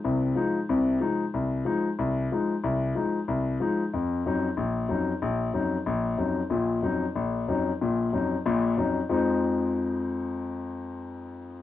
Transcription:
X:1
M:4/4
L:1/8
Q:"Swing" 1/4=186
K:Fphr
V:1 name="Grand piano" clef=bass
[C,,C,]2 [F,A,E] z [C,,C,]2 [F,A,E] z | C,,2 [F,A,E] z C,,2 [F,A,E] z | C,,2 [F,A,E] z C,,2 [F,A,E] z | F,,2 [F,,G,DE] z B,,,2 [F,,G,DE] z |
B,,,2 [F,,G,DE] z B,,,2 [F,,G,DE] z | [B,,,B,,]2 [F,,G,DE] z B,,,2 [F,,G,DE] z | [B,,,B,,]2 [F,,G,DE] z [B,,,B,,]2 [F,,G,DE] z | [F,,F,A,CE]8- |
[F,,F,A,CE]8 |]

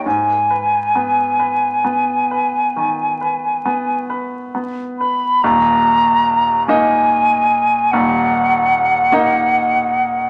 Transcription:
X:1
M:12/8
L:1/8
Q:3/8=47
K:G#m
V:1 name="Flute"
g8- g z2 b | [K:Ebm] b3 a3 g6 |]
V:2 name="Grand piano"
G,, B B, B B, B D, B B, B B, B | [K:Ebm] [E,,,E,,]3 [B,Ee]3 [E,,,E,,]3 [B,Ee]3 |]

